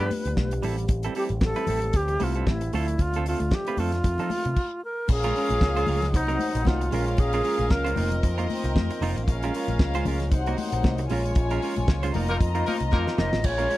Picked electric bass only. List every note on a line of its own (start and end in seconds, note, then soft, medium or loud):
0.26 0.35 D2 medium
0.37 0.59 B1 medium
0.63 1.07 A1 loud
1.30 1.52 A1 medium
1.68 1.90 A1 medium
1.94 2.16 D2 loud
2.20 2.43 C2 medium
2.47 2.69 A1 medium
2.73 2.95 D2 medium
2.99 3.34 D2 loud
3.40 3.50 D2 medium
3.78 4.00 F2 medium
4.04 4.17 F2 loud
4.19 4.28 F3 medium
4.46 4.55 C3 medium
5.09 5.31 A#1 loud
5.50 5.60 A#1 medium
5.61 5.83 C#2 medium
5.88 6.14 C#2 loud
6.14 6.36 C2 medium
6.55 6.66 A#1 medium
6.66 6.88 C2 medium
6.92 7.14 A#1 loud
7.18 7.40 A#1 loud
7.59 7.69 A#1 loud
7.71 7.92 C#2 medium
7.98 8.19 F1 loud
8.23 8.45 F2 loud
8.64 8.74 C2 loud
8.76 8.88 F2 medium
9.01 9.13 F1 medium
9.16 9.28 A1 medium
9.28 9.50 A#1 loud
9.68 9.78 A#1 medium
9.79 10.01 C#2 loud
10.06 10.32 C#2 medium
10.32 10.54 C2 loud
10.73 10.84 A#1 medium
10.84 11.06 C2 medium
11.11 11.32 A#1 medium
11.36 11.58 A#1 loud
11.78 11.87 A#1 loud
11.88 12.10 C#2 medium
12.14 12.36 F1 loud
12.41 12.62 F2 loud
12.81 12.91 C2 medium
12.93 13.05 F2 medium
13.18 13.31 F1 loud
13.33 13.45 A1 medium
13.45 13.66 A#1 loud